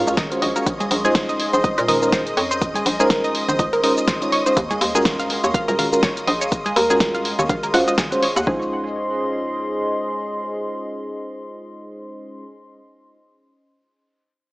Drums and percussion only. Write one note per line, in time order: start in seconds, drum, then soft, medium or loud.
0.07 shaker medium
0.17 kick loud
0.17 snare loud
0.17 closed hi-hat medium
0.17 low conga medium
0.17 shaker medium
0.32 closed hi-hat medium
0.32 shaker soft
0.42 open hi-hat loud
0.56 closed hi-hat soft
0.56 shaker medium
0.66 kick loud
0.66 closed hi-hat medium
0.66 shaker medium
0.80 closed hi-hat medium
0.80 high conga loud
0.80 shaker soft
0.91 open hi-hat loud
1.05 closed hi-hat soft
1.05 shaker medium
1.15 kick loud
1.15 snare loud
1.15 closed hi-hat medium
1.15 shaker medium
1.29 closed hi-hat medium
1.29 shaker soft
1.40 open hi-hat medium
1.53 closed hi-hat soft
1.53 shaker medium
1.64 kick loud
1.64 closed hi-hat medium
1.64 high conga medium
1.64 shaker medium
1.78 closed hi-hat medium
1.78 shaker soft
1.88 open hi-hat loud
1.88 low conga medium
2.03 shaker medium
2.12 kick loud
2.12 snare loud
2.12 closed hi-hat medium
2.12 shaker medium
2.27 closed hi-hat medium
2.27 shaker soft
2.37 open hi-hat medium
2.51 closed hi-hat soft
2.51 shaker medium
2.62 kick loud
2.62 closed hi-hat medium
2.62 shaker medium
2.75 closed hi-hat medium
2.75 high conga medium
2.75 shaker soft
2.86 open hi-hat loud
3.00 closed hi-hat soft
3.00 shaker medium
3.10 kick loud
3.10 snare loud
3.10 closed hi-hat medium
3.10 shaker medium
3.24 closed hi-hat medium
3.24 shaker soft
3.35 open hi-hat medium
3.48 closed hi-hat soft
3.48 low conga loud
3.48 shaker medium
3.59 kick loud
3.59 closed hi-hat medium
3.59 high conga medium
3.59 shaker medium
3.73 closed hi-hat medium
3.73 shaker soft
3.83 open hi-hat loud
3.98 shaker medium
4.08 kick loud
4.08 snare loud
4.08 closed hi-hat medium
4.08 low conga medium
4.08 shaker medium
4.22 closed hi-hat medium
4.22 shaker soft
4.32 open hi-hat medium
4.46 closed hi-hat soft
4.46 shaker medium
4.57 kick loud
4.57 closed hi-hat medium
4.57 shaker medium
4.71 closed hi-hat medium
4.71 high conga loud
4.71 shaker soft
4.81 open hi-hat loud
4.95 closed hi-hat soft
4.95 shaker medium
5.05 kick loud
5.05 snare loud
5.05 closed hi-hat medium
5.05 shaker medium
5.19 closed hi-hat medium
5.19 shaker soft
5.30 open hi-hat medium
5.44 closed hi-hat soft
5.44 shaker medium
5.54 kick loud
5.54 closed hi-hat medium
5.54 high conga medium
5.54 shaker medium
5.68 closed hi-hat medium
5.68 shaker soft
5.79 open hi-hat loud
5.79 low conga loud
5.93 shaker medium
6.03 kick loud
6.03 snare loud
6.03 closed hi-hat medium
6.03 shaker medium
6.17 closed hi-hat medium
6.17 shaker soft
6.27 open hi-hat medium
6.41 closed hi-hat soft
6.41 shaker medium
6.52 kick loud
6.52 closed hi-hat medium
6.52 shaker medium
6.66 closed hi-hat medium
6.66 high conga medium
6.66 shaker soft
6.76 open hi-hat loud
6.90 closed hi-hat soft
6.90 shaker medium
7.00 kick loud
7.00 snare loud
7.00 closed hi-hat medium
7.00 shaker medium
7.15 closed hi-hat medium
7.15 high conga medium
7.15 shaker soft
7.25 open hi-hat medium
7.39 closed hi-hat soft
7.39 low conga loud
7.39 shaker medium
7.49 kick loud
7.49 closed hi-hat medium
7.49 high conga medium
7.49 shaker medium
7.63 closed hi-hat medium
7.63 shaker soft
7.74 open hi-hat loud
7.88 closed hi-hat soft
7.88 shaker medium
7.98 kick loud
7.98 snare loud
7.98 closed hi-hat medium
7.98 low conga medium
7.98 shaker medium
8.12 closed hi-hat medium
8.12 shaker soft
8.23 open hi-hat medium
8.36 closed hi-hat soft
8.36 shaker medium
8.47 kick loud